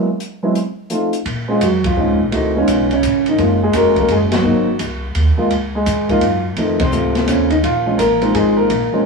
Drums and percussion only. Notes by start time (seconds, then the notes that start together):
0.20 closed hi-hat
0.55 closed hi-hat
0.90 closed hi-hat
1.13 closed hi-hat
1.26 kick, ride
1.61 kick, hi-hat pedal, ride
1.84 kick, ride
2.32 kick, ride
2.68 kick, hi-hat pedal, ride
2.91 ride
3.03 kick, hi-hat pedal, ride
3.26 ride
3.38 kick, ride
3.73 kick, hi-hat pedal, ride
3.96 kick, ride
4.08 kick, ride
4.32 snare, ride
4.79 kick, hi-hat pedal, ride
5.15 kick, ride
5.50 kick, ride
5.86 kick, hi-hat pedal, ride
6.09 kick, ride
6.21 ride
6.56 kick, ride
6.80 kick, ride
6.92 hi-hat pedal
7.15 snare, ride
7.28 kick, hi-hat pedal, ride
7.50 ride
7.64 kick, ride
7.99 kick, hi-hat pedal, ride
8.22 ride
8.35 kick, ride
8.70 kick, ride